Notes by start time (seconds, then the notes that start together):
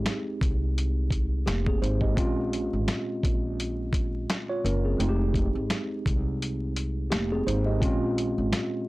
Already playing: F2 G#3 C4 D#4 G4
0.06 snare, closed hi-hat
0.41 C2, kick, closed hi-hat
0.78 closed hi-hat
1.10 kick, closed hi-hat
1.46 F1 A#3 G4, snare, closed hi-hat
1.67 C4 G#4, kick
1.82 G#1 D#4 C5, closed hi-hat
2.01 G4 D#5, kick
2.13 A#1 A#2 G#3 C4 C#4, kick
2.18 F4, closed hi-hat
2.53 closed hi-hat
2.73 G#1
2.88 snare, closed hi-hat
3.23 A#1, kick, closed hi-hat
3.60 closed hi-hat
3.93 kick, closed hi-hat
4.30 snare, closed hi-hat
4.49 F4 C#5
4.64 F#1 C#4 A#4, closed hi-hat
4.85 C4 G#4
4.97 F1 F2 G#3 C4 D#4, closed hi-hat
5.02 F4
5.09 G4
5.34 kick, closed hi-hat
5.55 G#1
5.70 snare, closed hi-hat
6.06 C2, kick, closed hi-hat
6.42 closed hi-hat
6.76 closed hi-hat
7.11 F1 A#3 G4, snare, closed hi-hat
7.32 C4 G#4
7.47 G#1 D#4 C5, closed hi-hat
7.66 G4 D#5
7.79 A#1 A#2 G#3 C4 C#4, kick, closed hi-hat
7.84 F4
8.18 closed hi-hat
8.38 G#1
8.53 snare, closed hi-hat